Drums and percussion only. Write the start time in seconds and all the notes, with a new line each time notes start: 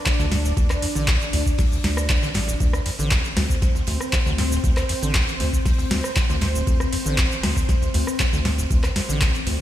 0.05 kick, snare, clap, ride, shaker
0.20 ride, shaker
0.32 snare, open hi-hat, ride
0.45 snare, shaker
0.57 kick, ride, shaker
0.70 cross-stick, snare, clap, shaker
0.82 open hi-hat, ride
0.96 shaker
1.08 kick, snare, clap, ride, shaker
1.22 shaker
1.33 open hi-hat, ride
1.46 kick, shaker
1.58 kick, snare, open hi-hat, ride, shaker
1.72 shaker
1.84 snare, open hi-hat, ride
1.97 cross-stick, shaker
2.09 kick, snare, clap, ride, shaker
2.22 snare, shaker
2.34 snare, open hi-hat, ride
2.49 shaker
2.60 kick, ride, shaker
2.73 cross-stick, shaker
2.86 open hi-hat, ride
2.99 shaker
3.11 kick, snare, clap, ride, shaker
3.25 shaker
3.36 cross-stick, snare, open hi-hat, ride
3.50 kick, shaker
3.62 kick, snare, ride, shaker
3.76 shaker
3.87 open hi-hat, ride
4.01 cross-stick, shaker
4.13 kick, snare, clap, ride, shaker
4.25 ride, shaker
4.38 snare, open hi-hat, ride
4.52 snare, shaker
4.64 kick, ride, shaker
4.77 cross-stick, snare, clap, shaker
4.89 open hi-hat, ride
5.03 shaker
5.15 kick, snare, clap, ride, shaker
5.28 shaker
5.40 open hi-hat, ride
5.53 kick, shaker
5.65 kick, snare, open hi-hat, ride, shaker
5.79 shaker
5.91 snare, open hi-hat, ride
6.04 cross-stick, shaker
6.16 kick, snare, clap, ride, shaker
6.30 snare, shaker
6.41 snare, open hi-hat, ride
6.55 shaker
6.67 kick, ride, shaker
6.80 cross-stick, shaker
6.92 open hi-hat, ride
7.06 shaker
7.18 kick, snare, clap, ride, shaker
7.32 shaker
7.43 cross-stick, snare, open hi-hat, ride
7.56 kick, shaker
7.69 kick, snare, ride, shaker
7.83 shaker
7.94 open hi-hat, ride
8.07 cross-stick, shaker
8.20 kick, snare, clap, ride, shaker
8.33 ride, shaker
8.45 snare, open hi-hat, ride
8.58 snare, shaker
8.71 kick, ride, shaker
8.83 cross-stick, snare, clap, shaker
8.96 snare, open hi-hat, ride
9.10 shaker
9.21 kick, snare, clap, ride, shaker
9.35 shaker
9.46 open hi-hat, ride